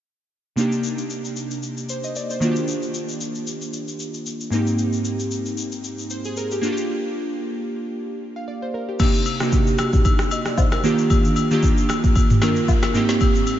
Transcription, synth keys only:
0.56 C3 A#3 D4 D#4
0.60 G4
1.90 C5
2.04 D#5
2.16 D5
2.31 C5
2.40 D#3 A#3 D4 F4
2.45 F#4
2.51 G4
4.50 G#2 A#3 C4 D#4
4.55 G4
6.11 C5
6.25 G#4
6.37 A#4
6.52 G4
6.61 A#3 D4 F4
6.66 F#4
6.72 G4
8.36 F5
8.48 D5
8.62 C5
8.74 A#4
8.89 G4
8.99 C3 A#3 D4 D#4 G4
9.40 C3 A#3 D4 D#4 F#4
9.49 G4
10.32 D#5
10.47 D5
10.58 C5
10.73 A#4
10.83 D#3 A#3 D4 F4 G4
11.51 D#3 A#3 D4 F4 G4
12.42 D#3 A#3 D4 F4 A#4
12.94 G#2 A#3 C4 D#4 G4

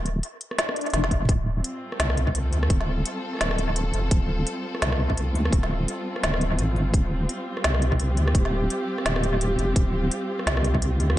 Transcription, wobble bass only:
Already playing: D1
0.93 F1
1.29 D1
2.00 C2
2.53 D2
2.70 D1
3.41 D1
3.94 F1
4.11 D1
4.82 C2
5.35 D2
5.52 D1
6.23 D1
6.59 A1
6.76 G1
6.94 D1
7.65 C2
8.17 D2
8.35 D1
9.05 D1
9.58 F1
9.76 D1
10.47 C2
11.00 D2

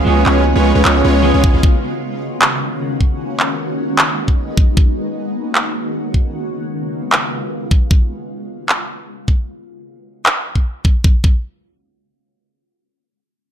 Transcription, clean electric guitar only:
0.04 F3 G#3 B3 C#4
0.08 G#4
1.23 F3 G#3 B3 C#4 G#4

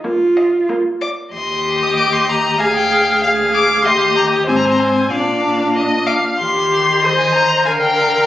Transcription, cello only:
0.04 F4
1.34 D#2
2.61 D2
3.86 D#2
4.48 G#2
5.11 A#2
6.38 D#3
7.66 D3

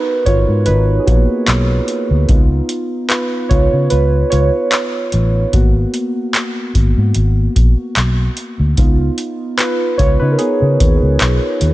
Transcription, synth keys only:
Already playing: B3 D#4 F#4 A#4 B4
0.26 F4 C#5
0.66 D#4 B4
0.99 G#4
1.06 A#3 B3 F#4
2.28 B3 D#4 F4
3.09 F4 B4
3.49 F4 C#5
3.90 F4 B4
4.30 F4 C#5
5.53 A#3 B3 F#4
8.77 B3 D#4 F4
9.57 F4 B4
9.98 F4 C#5
10.19 D#4 B4
10.32 A#4
10.38 B3 G#4

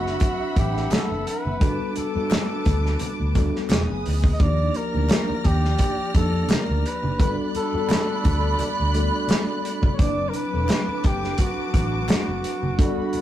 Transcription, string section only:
Already playing: E5 F#5 B5
1.61 B4 A5 D6
3.70 B4 G#5 D#6
4.39 D5 F6 A#6
7.20 D5 B5 F#6
9.99 B4 A5 D6
12.79 F#4 D5 B5

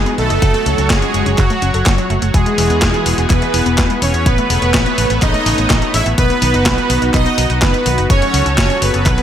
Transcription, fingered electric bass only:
0.18 B1
0.30 F#1
0.42 F#1
0.66 C#2
0.78 C#2
0.90 F#1
1.14 F#1
1.26 F#1
1.38 F#1
1.62 F#1
1.74 F#1
1.86 F#1
2.10 F#1
2.22 F#1
2.34 E1
2.58 E1
2.70 E2
2.82 E1
3.06 E1
3.18 E1
3.30 E1
3.54 E1
3.66 E1
3.78 E2
4.02 E1
4.14 E2
4.26 A1
4.50 E1
4.62 E1
4.74 A1
4.98 A1
5.10 A1
5.22 A1
5.46 A1
5.58 A1
5.70 A1
5.94 A1
6.06 A1
6.18 B1
6.42 B1
6.54 F#1
6.66 B1
6.90 B1
7.02 B1
7.14 B1
7.38 B1
7.50 B1
7.86 B1
7.98 F#1
8.10 F#1
8.34 C#2
8.46 C#2
8.58 F#1
8.82 F#1
8.94 F#1
9.06 B1

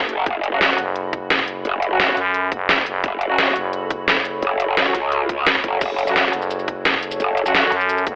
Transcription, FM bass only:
0.78 F#1
2.17 F#2
2.52 F#1
2.86 F#1
3.56 F#1
6.33 F#1
7.72 F#2
8.07 F#1

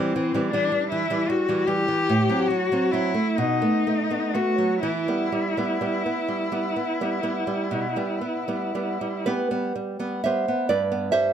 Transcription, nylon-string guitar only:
Already playing: E3 G3
0.16 E3
0.34 E3 G3
0.53 E3 G3
0.72 G3
0.92 E3
1.10 E3 G3
1.30 G3
1.49 E3 G3
1.67 E3 G3
1.88 E3
2.09 A2
2.29 F#3 C4
2.50 F#3
2.72 F#3 C4
2.93 F#3 C4
3.14 A3
3.38 B2
3.62 A3 B3
3.87 A3
4.10 A3 B3
4.35 A3 B3
4.58 F#3
4.83 E3
5.08 G3 B3
5.32 G3
5.57 G3 B3
5.81 G3 B3
6.06 B3
6.28 G3
6.52 G3 B3
6.76 B3
7.01 G3 B3
7.23 G3 B3
7.47 G3
7.71 B2
7.96 G3 B3
8.21 B3
8.48 G3 B3
8.75 G3 B3
9.01 G3
9.26 B3 G4 B4
9.51 G3 B3
9.76 G3
9.99 G3 B3
10.24 G3 B3 C5 E5
10.48 B3
10.69 G2 B4 D5
10.92 B3
11.12 G3 C5 E5

